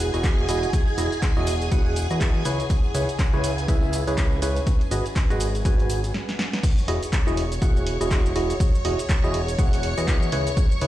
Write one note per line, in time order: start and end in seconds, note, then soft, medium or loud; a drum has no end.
0.00 0.11 E1 loud
0.00 0.10 E4 medium
0.00 3.36 E4 medium
0.00 0.10 F#4 medium
0.00 0.10 G#4 medium
0.00 6.14 G#4 medium
0.00 2.45 D#5 medium
0.00 0.10 F#5 medium
0.00 3.36 F#5 medium
0.00 6.14 G#5 medium
0.00 tambourine medium
0.00 shaker medium
0.14 0.47 E1 medium
0.14 0.46 E4 medium
0.14 0.46 F#4 medium
0.14 0.46 G#4 medium
0.14 0.46 D#5 medium
0.14 closed hi-hat soft
0.14 tambourine soft
0.14 shaker soft
0.23 kick loud
0.23 clap loud
0.23 closed hi-hat medium
0.23 tambourine medium
0.23 shaker soft
0.39 tambourine soft
0.48 0.66 E1 loud
0.48 0.68 E4 medium
0.48 0.69 F#4 medium
0.48 0.68 G#4 medium
0.48 0.69 D#5 medium
0.48 open hi-hat loud
0.48 tambourine medium
0.48 shaker medium
0.63 closed hi-hat medium
0.63 tambourine soft
0.63 shaker soft
0.73 kick loud
0.73 closed hi-hat medium
0.73 tambourine soft
0.73 shaker soft
0.88 tambourine soft
0.98 1.09 E1 medium
0.98 1.12 E4 medium
0.98 1.12 F#4 medium
0.98 1.12 G#4 medium
0.98 1.12 D#5 medium
0.98 open hi-hat loud
0.98 tambourine medium
0.98 shaker medium
1.12 closed hi-hat medium
1.12 tambourine soft
1.12 shaker soft
1.22 kick loud
1.22 clap loud
1.22 closed hi-hat medium
1.22 tambourine soft
1.22 shaker soft
1.36 1.70 E1 medium
1.36 1.55 E4 medium
1.36 1.55 F#4 medium
1.36 1.55 G#4 medium
1.36 1.55 D#5 loud
1.36 tambourine soft
1.47 open hi-hat loud
1.47 tambourine loud
1.47 shaker medium
1.62 closed hi-hat medium
1.62 tambourine soft
1.62 shaker soft
1.71 2.08 E1 loud
1.71 2.07 E4 medium
1.71 2.07 F#4 medium
1.71 2.07 G#4 medium
1.71 2.07 F#5 medium
1.71 kick loud
1.71 closed hi-hat medium
1.71 tambourine soft
1.71 shaker soft
1.86 tambourine soft
1.96 open hi-hat loud
1.96 tambourine medium
1.96 shaker medium
2.10 2.43 E2 loud
2.10 2.43 E4 medium
2.10 2.43 F#4 medium
2.10 2.43 G#4 medium
2.10 2.43 D#5 medium
2.10 closed hi-hat medium
2.10 tambourine soft
2.10 shaker soft
2.21 kick loud
2.21 clap loud
2.21 closed hi-hat medium
2.21 tambourine soft
2.21 shaker soft
2.35 tambourine soft
2.45 2.63 C#2 loud
2.45 5.46 C#4 medium
2.45 2.65 E4 medium
2.45 2.65 G#4 medium
2.45 2.65 B4 medium
2.45 2.65 C#5 medium
2.45 open hi-hat loud
2.45 tambourine medium
2.45 shaker medium
2.60 4.67 E5 medium
2.60 closed hi-hat medium
2.60 tambourine soft
2.60 shaker soft
2.70 kick loud
2.70 closed hi-hat medium
2.70 tambourine medium
2.70 shaker soft
2.84 6.14 B4 medium
2.84 tambourine soft
2.95 3.06 C#2 loud
2.95 3.08 E4 medium
2.95 3.08 G#4 medium
2.95 3.08 B4 medium
2.95 3.08 C#5 medium
2.95 open hi-hat loud
2.95 tambourine medium
2.95 shaker medium
3.09 closed hi-hat medium
3.09 tambourine soft
3.09 shaker soft
3.19 kick loud
3.19 clap loud
3.19 closed hi-hat medium
3.19 tambourine soft
3.19 shaker soft
3.33 3.66 C#2 medium
3.33 3.51 E4 medium
3.33 3.51 G#4 medium
3.33 3.51 B4 medium
3.33 3.51 C#5 loud
3.33 tambourine soft
3.44 open hi-hat loud
3.44 tambourine medium
3.44 shaker medium
3.58 closed hi-hat medium
3.58 tambourine soft
3.58 shaker soft
3.68 4.04 C#2 loud
3.68 4.04 E4 medium
3.68 4.04 G#4 medium
3.68 4.04 B4 medium
3.68 4.04 E5 medium
3.68 kick loud
3.68 closed hi-hat medium
3.68 tambourine medium
3.68 shaker soft
3.83 tambourine soft
3.93 open hi-hat loud
3.93 tambourine loud
3.93 shaker medium
4.07 4.40 C#2 loud
4.07 4.40 E4 medium
4.07 4.40 G#4 medium
4.07 4.40 B4 medium
4.07 4.40 C#5 medium
4.07 closed hi-hat medium
4.07 tambourine soft
4.07 shaker soft
4.17 kick loud
4.17 clap loud
4.17 closed hi-hat medium
4.17 tambourine soft
4.17 shaker soft
4.33 tambourine soft
4.42 4.60 C#2 loud
4.42 4.62 E4 medium
4.42 4.62 G#4 medium
4.42 4.62 B4 medium
4.42 4.62 C#5 medium
4.42 open hi-hat loud
4.42 tambourine medium
4.42 shaker medium
4.56 closed hi-hat medium
4.56 tambourine soft
4.56 shaker soft
4.67 6.14 D#4 medium
4.67 kick loud
4.67 closed hi-hat medium
4.67 tambourine soft
4.67 shaker soft
4.81 closed hi-hat soft
4.81 tambourine soft
4.91 5.02 G#1 medium
4.91 5.05 F#4 medium
4.91 5.05 G#4 medium
4.91 5.05 B4 medium
4.91 5.05 D#5 medium
4.91 open hi-hat loud
4.91 tambourine medium
4.91 shaker medium
5.06 closed hi-hat medium
5.06 tambourine soft
5.06 shaker soft
5.16 kick loud
5.16 clap loud
5.16 closed hi-hat medium
5.16 tambourine soft
5.16 shaker soft
5.30 5.63 G#1 medium
5.30 5.48 F#4 medium
5.30 5.48 G#4 medium
5.30 5.48 B4 medium
5.30 5.48 D#5 medium
5.30 closed hi-hat soft
5.30 tambourine soft
5.30 shaker soft
5.40 open hi-hat loud
5.40 tambourine medium
5.40 shaker medium
5.55 closed hi-hat medium
5.55 tambourine soft
5.55 shaker soft
5.65 6.12 G#1 loud
5.65 6.01 F#4 medium
5.65 6.01 G#4 medium
5.65 6.01 B4 medium
5.65 6.01 G#5 medium
5.65 kick loud
5.65 closed hi-hat medium
5.65 tambourine soft
5.65 shaker soft
5.80 closed hi-hat soft
5.80 tambourine soft
5.89 open hi-hat loud
5.89 tambourine medium
5.89 shaker medium
6.04 closed hi-hat medium
6.04 tambourine soft
6.04 shaker soft
6.14 snare medium
6.29 snare medium
6.39 snare medium
6.53 snare medium
6.63 10.87 C#5 medium
6.63 10.87 C#6 medium
6.63 kick loud
6.63 closed hi-hat medium
6.63 crash loud
6.63 shaker medium
6.78 shaker soft
6.88 6.99 E1 loud
6.88 7.02 E4 medium
6.88 7.02 F#4 medium
6.88 7.02 G#4 medium
6.88 7.02 D#5 medium
6.88 open hi-hat loud
7.03 closed hi-hat medium
7.03 shaker medium
7.13 kick loud
7.13 clap loud
7.13 closed hi-hat medium
7.13 shaker medium
7.27 7.60 E1 medium
7.27 7.45 E4 medium
7.27 7.45 F#4 medium
7.27 7.45 G#4 medium
7.27 7.45 D#5 loud
7.27 shaker soft
7.37 open hi-hat loud
7.52 closed hi-hat medium
7.52 shaker medium
7.62 7.98 E1 medium
7.62 7.97 E4 medium
7.62 7.97 F#4 medium
7.62 7.97 G#4 medium
7.62 7.97 F#5 medium
7.62 kick loud
7.62 closed hi-hat medium
7.62 shaker medium
7.77 shaker soft
7.87 open hi-hat loud
8.01 8.34 E1 loud
8.01 8.33 E4 medium
8.01 8.33 F#4 medium
8.01 8.33 G#4 medium
8.01 8.33 D#5 medium
8.01 closed hi-hat medium
8.01 shaker medium
8.11 kick loud
8.11 clap loud
8.11 closed hi-hat medium
8.11 shaker medium
8.26 shaker soft
8.36 8.53 E1 loud
8.36 8.55 E4 medium
8.36 8.55 F#4 medium
8.36 8.55 G#4 medium
8.36 8.55 D#5 medium
8.36 open hi-hat loud
8.50 closed hi-hat medium
8.50 shaker medium
8.60 kick loud
8.60 closed hi-hat medium
8.60 shaker medium
8.75 shaker soft
8.85 8.96 E1 medium
8.85 8.99 E4 medium
8.85 8.99 F#4 medium
8.85 8.99 G#4 medium
8.85 8.99 D#5 medium
8.85 open hi-hat loud
8.99 closed hi-hat medium
8.99 shaker medium
9.09 kick loud
9.09 clap loud
9.09 closed hi-hat medium
9.09 shaker medium
9.24 9.57 E1 medium
9.24 9.42 E4 medium
9.24 9.42 F#4 medium
9.24 9.42 G#4 medium
9.24 9.42 D#5 loud
9.24 shaker soft
9.34 open hi-hat loud
9.48 closed hi-hat medium
9.48 shaker medium
9.59 9.95 E1 loud
9.59 9.94 E4 medium
9.59 9.94 F#4 medium
9.59 9.94 G#4 medium
9.59 9.94 F#5 medium
9.59 kick loud
9.59 closed hi-hat medium
9.59 shaker medium
9.73 open hi-hat medium
9.73 shaker soft
9.83 open hi-hat loud
9.98 10.30 E2 loud
9.98 10.30 E4 medium
9.98 10.30 F#4 medium
9.98 10.30 G#4 medium
9.98 10.30 D#5 medium
9.98 closed hi-hat medium
9.98 shaker medium
10.08 kick loud
10.08 clap loud
10.08 closed hi-hat medium
10.08 shaker medium
10.22 shaker soft
10.32 10.50 C#2 loud
10.32 10.52 E4 medium
10.32 10.52 G#4 medium
10.32 10.52 B4 medium
10.32 10.52 C#5 medium
10.32 open hi-hat loud
10.47 closed hi-hat medium
10.47 shaker medium
10.57 kick loud
10.57 closed hi-hat medium
10.57 shaker medium
10.72 shaker soft
10.81 10.87 C#2 medium
10.81 10.87 E4 medium
10.81 10.87 G#4 medium
10.81 10.87 B4 medium
10.81 10.87 C#5 medium
10.81 open hi-hat loud